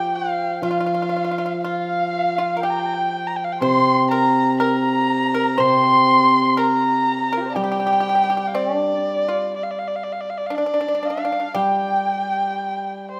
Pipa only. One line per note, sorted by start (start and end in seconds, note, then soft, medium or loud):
0.00 0.13 G4 medium
0.13 0.25 F#4 medium
0.25 0.59 F4 medium
0.63 0.69 F4 medium
0.71 0.78 F4 soft
0.80 0.85 F4 soft
0.86 0.93 F4 soft
0.94 1.01 F4 soft
1.02 1.08 F4 soft
1.09 1.15 F4 soft
1.16 1.23 F4 soft
1.24 1.30 F4 soft
1.31 1.37 F4 soft
1.38 1.45 F4 soft
1.46 1.53 F4 soft
1.64 2.35 F4 medium
2.38 2.55 F4 medium
2.57 2.63 A#4 soft
2.63 3.22 G4 medium
3.62 4.08 C5 medium
4.11 4.57 A#4 medium
4.60 5.30 A#4 medium
5.34 5.57 A#4 medium
5.58 6.53 C5 medium
6.57 7.28 A#4 medium
7.33 7.55 A#4 medium
7.56 7.62 G4 medium
7.64 7.70 G4 soft
7.72 7.79 G4 medium
7.80 7.85 G4 soft
7.87 7.92 G4 medium
7.93 7.99 G4 soft
8.00 8.08 G4 medium
8.09 8.14 G4 soft
8.15 8.23 G4 soft
8.24 8.29 G4 soft
8.30 8.36 G4 medium
8.37 8.45 G4 soft
8.55 8.76 C4 medium
8.76 9.26 D4 medium
9.28 9.52 F4 soft
10.50 10.57 D4 medium
10.58 10.65 D4 soft
10.66 10.73 D4 soft
10.74 10.79 D4 soft
10.81 10.87 D4 soft
10.88 10.93 D4 soft
10.95 11.02 D4 soft
11.03 11.09 D4 soft
11.10 11.16 D4 soft
11.17 11.23 D4 soft
11.25 11.31 D4 soft
11.32 11.38 D4 soft
11.40 11.48 D4 soft
11.55 13.04 G4 medium